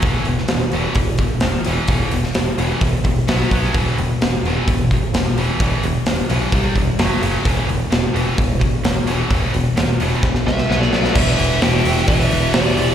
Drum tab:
CC |----------------|----------------|----------------|----------------|
HH |o-o-o-o-o-o-o-o-|o-o-o-o-o-o-o-o-|o-o-o-o-o-o-o-o-|o-o-o-o-o-o-o-o-|
SD |---oo-------o---|---oo-------o--o|----o-------o---|----o-------o---|
BD |o-------o-o-----|o-------o-o---o-|o-------o-o-----|o-------o-o-----|

CC |----------------|----------------|x---------------|
HH |o-o-o-o-o-o-o-o-|o-o-o-o---------|--o-o-o-o-o-o-o-|
SD |----o-------o---|----o---oooooooo|----o--o----o---|
BD |o-------o-o-----|o-------o-------|o-------o-------|